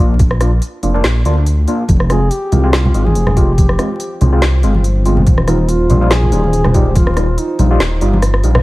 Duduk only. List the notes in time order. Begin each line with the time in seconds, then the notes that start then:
2.10 G#4
2.31 G4
2.73 F4
3.05 G#4
3.36 G4
5.48 D#4
5.69 F4
6.11 G#4
6.75 G4
6.96 F4
7.38 D#4